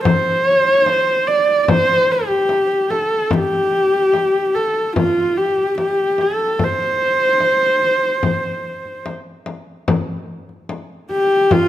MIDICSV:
0, 0, Header, 1, 3, 480
1, 0, Start_track
1, 0, Tempo, 818554
1, 23, Time_signature, 4, 2, 24, 8
1, 6851, End_track
2, 0, Start_track
2, 0, Title_t, "Horsehead fiddle"
2, 0, Program_c, 0, 110
2, 28, Note_on_c, 0, 72, 96
2, 274, Note_off_c, 0, 72, 0
2, 274, Note_on_c, 0, 73, 96
2, 344, Note_off_c, 0, 73, 0
2, 344, Note_on_c, 0, 72, 96
2, 745, Note_on_c, 0, 74, 86
2, 754, Note_off_c, 0, 72, 0
2, 954, Note_off_c, 0, 74, 0
2, 954, Note_on_c, 0, 74, 66
2, 990, Note_on_c, 0, 72, 102
2, 999, Note_off_c, 0, 74, 0
2, 1238, Note_on_c, 0, 67, 90
2, 1246, Note_off_c, 0, 72, 0
2, 1701, Note_on_c, 0, 69, 83
2, 1710, Note_off_c, 0, 67, 0
2, 1954, Note_on_c, 0, 67, 94
2, 1963, Note_off_c, 0, 69, 0
2, 2666, Note_on_c, 0, 69, 83
2, 2674, Note_off_c, 0, 67, 0
2, 2906, Note_off_c, 0, 69, 0
2, 2916, Note_on_c, 0, 65, 84
2, 3148, Note_on_c, 0, 67, 80
2, 3156, Note_off_c, 0, 65, 0
2, 3387, Note_off_c, 0, 67, 0
2, 3393, Note_on_c, 0, 67, 82
2, 3638, Note_on_c, 0, 69, 81
2, 3647, Note_off_c, 0, 67, 0
2, 3888, Note_on_c, 0, 72, 93
2, 3897, Note_off_c, 0, 69, 0
2, 5317, Note_off_c, 0, 72, 0
2, 6515, Note_on_c, 0, 67, 95
2, 6756, Note_on_c, 0, 65, 102
2, 6764, Note_off_c, 0, 67, 0
2, 6851, Note_off_c, 0, 65, 0
2, 6851, End_track
3, 0, Start_track
3, 0, Title_t, "Frame drum"
3, 30, Note_on_c, 9, 64, 88
3, 89, Note_off_c, 9, 64, 0
3, 276, Note_on_c, 9, 64, 25
3, 335, Note_off_c, 9, 64, 0
3, 506, Note_on_c, 9, 64, 61
3, 565, Note_off_c, 9, 64, 0
3, 987, Note_on_c, 9, 64, 84
3, 1046, Note_off_c, 9, 64, 0
3, 1346, Note_on_c, 9, 64, 25
3, 1405, Note_off_c, 9, 64, 0
3, 1461, Note_on_c, 9, 64, 61
3, 1520, Note_off_c, 9, 64, 0
3, 1704, Note_on_c, 9, 64, 57
3, 1762, Note_off_c, 9, 64, 0
3, 1939, Note_on_c, 9, 64, 83
3, 1998, Note_off_c, 9, 64, 0
3, 2190, Note_on_c, 9, 64, 24
3, 2249, Note_off_c, 9, 64, 0
3, 2425, Note_on_c, 9, 64, 57
3, 2484, Note_off_c, 9, 64, 0
3, 2668, Note_on_c, 9, 64, 24
3, 2727, Note_off_c, 9, 64, 0
3, 2909, Note_on_c, 9, 64, 78
3, 2968, Note_off_c, 9, 64, 0
3, 3269, Note_on_c, 9, 64, 26
3, 3327, Note_off_c, 9, 64, 0
3, 3389, Note_on_c, 9, 64, 61
3, 3447, Note_off_c, 9, 64, 0
3, 3625, Note_on_c, 9, 64, 53
3, 3684, Note_off_c, 9, 64, 0
3, 3866, Note_on_c, 9, 64, 72
3, 3924, Note_off_c, 9, 64, 0
3, 4106, Note_on_c, 9, 64, 23
3, 4164, Note_off_c, 9, 64, 0
3, 4342, Note_on_c, 9, 64, 57
3, 4400, Note_off_c, 9, 64, 0
3, 4588, Note_on_c, 9, 64, 24
3, 4647, Note_off_c, 9, 64, 0
3, 4825, Note_on_c, 9, 64, 76
3, 4884, Note_off_c, 9, 64, 0
3, 5190, Note_on_c, 9, 64, 24
3, 5249, Note_off_c, 9, 64, 0
3, 5311, Note_on_c, 9, 64, 61
3, 5370, Note_off_c, 9, 64, 0
3, 5548, Note_on_c, 9, 64, 58
3, 5607, Note_off_c, 9, 64, 0
3, 5792, Note_on_c, 9, 64, 88
3, 5851, Note_off_c, 9, 64, 0
3, 6152, Note_on_c, 9, 64, 25
3, 6211, Note_off_c, 9, 64, 0
3, 6270, Note_on_c, 9, 64, 65
3, 6329, Note_off_c, 9, 64, 0
3, 6506, Note_on_c, 9, 64, 27
3, 6564, Note_off_c, 9, 64, 0
3, 6749, Note_on_c, 9, 64, 86
3, 6808, Note_off_c, 9, 64, 0
3, 6851, End_track
0, 0, End_of_file